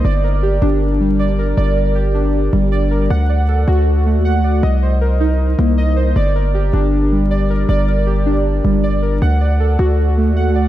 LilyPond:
<<
  \new Staff \with { instrumentName = "Synth keys" } { \time 4/4 \key g \minor \tempo 4 = 157 d''8 bes'8 g'8 d'4 g8 d''8 bes'8 | d''8 bes'8 g'8 d'4 g8 d''8 bes'8 | fis''8 d''8 a'8 fis'4 a8 fis''8 d''8 | ees''8 c''8 bes'8 ees'4 bes8 ees''8 c''8 |
d''8 bes'8 g'8 d'4 g8 d''8 bes'8 | d''8 bes'8 g'8 d'4 g8 d''8 bes'8 | fis''8 d''8 a'8 fis'4 a8 fis''8 d''8 | }
  \new Staff \with { instrumentName = "808-style bass" } { \clef bass \time 4/4 \key g \minor g,,4. g,,2~ g,,8 | g,,2~ g,,8 g,,4. | d,4. d,4~ d,16 ees,8~ ees,32 d,8~ d,32 | c,2~ c,8 c,4. |
g,,4. g,,2~ g,,8 | g,,2~ g,,8 g,,4. | d,4. d,4~ d,16 ees,8~ ees,32 d,8~ d,32 | }
>>